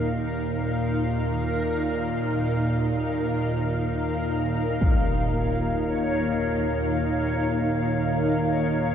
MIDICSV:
0, 0, Header, 1, 5, 480
1, 0, Start_track
1, 0, Tempo, 500000
1, 8591, End_track
2, 0, Start_track
2, 0, Title_t, "Synth texture"
2, 0, Program_c, 0, 99
2, 0, Note_on_c, 0, 70, 74
2, 4641, Note_on_c, 0, 73, 79
2, 4648, Note_off_c, 0, 70, 0
2, 8591, Note_off_c, 0, 73, 0
2, 8591, End_track
3, 0, Start_track
3, 0, Title_t, "Ambient pad"
3, 0, Program_c, 1, 92
3, 0, Note_on_c, 1, 63, 75
3, 0, Note_on_c, 1, 70, 53
3, 0, Note_on_c, 1, 77, 61
3, 8591, Note_off_c, 1, 63, 0
3, 8591, Note_off_c, 1, 70, 0
3, 8591, Note_off_c, 1, 77, 0
3, 8591, End_track
4, 0, Start_track
4, 0, Title_t, "Synth drone"
4, 0, Program_c, 2, 95
4, 0, Note_on_c, 2, 39, 65
4, 0, Note_on_c, 2, 46, 69
4, 4639, Note_off_c, 2, 46, 0
4, 4641, Note_off_c, 2, 39, 0
4, 4650, Note_on_c, 2, 46, 71
4, 4652, Note_on_c, 2, 39, 66
4, 8591, Note_off_c, 2, 39, 0
4, 8591, Note_off_c, 2, 46, 0
4, 8591, End_track
5, 0, Start_track
5, 0, Title_t, "Impact"
5, 0, Program_c, 3, 103
5, 4622, Note_on_c, 3, 60, 73
5, 4849, Note_off_c, 3, 60, 0
5, 8591, End_track
0, 0, End_of_file